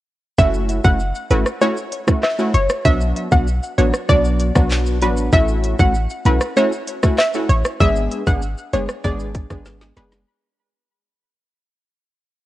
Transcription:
0.38 F#1 A3 C#4 E4 F#4 E5, kick, shaker
0.54 shaker
0.69 closed hi-hat, shaker
0.84 F#1 A3 C#4 E4 F#4 F#5, kick, shaker
1.00 shaker
1.15 shaker
1.31 G#1 A3 C#4 E4 F#4 B4, closed hi-hat, shaker
1.46 cross-stick, shaker
1.61 A3 C#4 E4 F#4 C#5, shaker
1.77 shaker
1.92 closed hi-hat, shaker
2.08 A3 C#4 E4 F#4, kick, cross-stick, shaker
2.23 E5, cross-stick, clap, shaker
2.39 A3 C#4 E4 F#4, shaker
2.55 F#1 C#5, closed hi-hat, shaker
2.70 cross-stick, shaker
2.85 B1 F#3 B3 D4 F#4 E5, kick, shaker
3.01 shaker
3.17 closed hi-hat, shaker
3.31 B1 F#3 B3 D4 F#4 F#5, kick, shaker
3.47 shaker
3.63 shaker
3.78 A1 F#3 B3 D4 F#4 C#5, closed hi-hat, shaker
3.94 cross-stick, shaker
4.09 B1 F#3 B3 D4 F#4 D5, kick, shaker
4.25 shaker
4.40 closed hi-hat, shaker
4.55 B1 F#3 B3 D4 F#4, kick, cross-stick, shaker
4.71 clap, shaker
4.86 shaker
5.02 A1 F#3 B3 D4 F#4 B4, closed hi-hat, shaker
5.17 shaker
5.33 A1 A3 C#4 E4 F#4 E5, kick, shaker
5.48 shaker
5.64 closed hi-hat, shaker
5.79 A1 A3 C#4 E4 F#4 F#5, kick, shaker
5.95 shaker
6.10 shaker
6.25 B1 A3 C#4 E4 F#4 B4, closed hi-hat, shaker
6.41 cross-stick, shaker
6.56 A3 C#4 E4 F#4 C#5, shaker
6.72 shaker
6.87 closed hi-hat, shaker
7.03 A3 C#4 E4 F#4, kick, cross-stick, shaker
7.18 E5, cross-stick, clap, shaker
7.34 A3 C#4 E4 F#4, shaker
7.49 A1 C#5, closed hi-hat, shaker
7.65 cross-stick, shaker
7.80 G#1 G#3 B3 D4 G#4 E5, kick, shaker
7.96 shaker
8.11 closed hi-hat, shaker
8.26 G#1 G#3 B3 D4 G#4 F#5, kick, shaker
8.42 shaker
8.58 shaker
8.73 F#1 G#3 B3 D4 G#4 C#5, closed hi-hat, shaker
8.89 cross-stick, shaker
9.04 G#1 G#3 B3 D4 G#4 D5, kick, shaker
9.20 shaker
9.35 kick, closed hi-hat, shaker
9.50 G#1 G#3 B3 D4 G#4, kick, cross-stick, shaker
9.66 snare, shaker
9.81 snare, shaker
9.96 F#1 G#3 B3 D4 G#4 B4, snare, closed hi-hat, shaker
10.12 snare, shaker

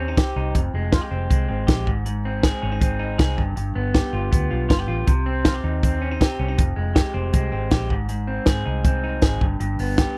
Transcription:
Already playing: D#2 C3 C4 G4
0.08 D#4
0.17 C2 G4, kick, snare, closed hi-hat
0.36 C2 D#4
0.55 F1 F2, kick, closed hi-hat
0.74 F1 G#3
0.92 F4, kick, snare, closed hi-hat
1.01 G4
1.11 F1 C4
1.30 C2 G#3, kick, closed hi-hat
1.49 G#1 C4
1.67 A#1 G4, kick, snare, closed hi-hat
1.86 G#1 G#2, kick
2.06 G#2, closed hi-hat
2.25 C4
2.43 G#4, kick, snare, closed hi-hat
2.62 G#1 C#4
2.72 D#4
2.81 C4, kick, closed hi-hat
2.99 D#4
3.18 C2 G#4, kick, snare, closed hi-hat
3.37 G1 G2, kick
3.56 G1 G2, closed hi-hat
3.75 G1 B3
3.94 G4, kick, snare, closed hi-hat
4.13 G1 F4
4.32 D2 B3, kick, closed hi-hat
4.51 B1 F4
4.69 G1 F4, kick, snare, closed hi-hat
4.79 G4
4.87 A1 F4
5.07 C2 C3, kick, closed hi-hat
5.26 C4
5.45 F4, kick, snare, closed hi-hat
5.54 G4
5.64 D#2 D#4
5.83 C4, kick, closed hi-hat
6.01 C#4
6.11 D#4
6.20 C2 G4, kick, snare, closed hi-hat
6.39 C2 C#4
6.48 D#4
6.57 F1 F2, kick, closed hi-hat
6.76 F1 G#3
6.95 G4, kick, snare, closed hi-hat
7.14 F1 C4
7.33 C2 G#3, kick, closed hi-hat
7.52 G#1 C4
7.71 A#1 G4, kick, snare, closed hi-hat
7.89 G#1 G#2, kick
8.09 G#2, closed hi-hat
8.28 C4
8.46 G#2 G#4, kick, snare, closed hi-hat
8.66 C2 D#4
8.85 C4, kick, closed hi-hat
9.04 D#4
9.22 G#1 G#4, kick, snare, closed hi-hat
9.41 G1 G2, kick
9.60 G1 G2, closed hi-hat
9.79 G1 B3, open hi-hat
9.98 G4, kick, snare, closed hi-hat

